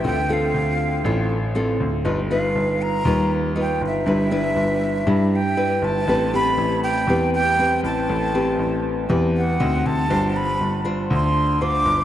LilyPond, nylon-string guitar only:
\new Staff \with { instrumentName = "Nylon-string guitar" } { \time 4/4 \key g \mixolydian \tempo 4 = 119 << { <c' f' a'>8 <c' f' a'>4. <c' f' a'>8 r8 <c' f' a'>8 r8 | <dis' f' b'>8 <dis' f' b'>4. <dis' f' b'>4 <dis' f' b'>4 | <d' e' b'>8 <d' e' b'>4. <d' e' b'>8 r8 <d' e' b'>4 | <c' g' b'>8 <c' g' b'>4. <c' g' b'>8 r8 <c' g' b'>4~ |
<c' g' b'>8 <c' g' b'>4. <c' g' b'>8 r8 <c' ees' fis'>4 | <d' f' c''>4 r8 <d' f' c''>4. <d' f' c''>8 r8 | } \\ { d2 a,2 | g2 g2 | g2 g2 | a2 e2 |
a2 e4 r4 | g2 d2 | } >> }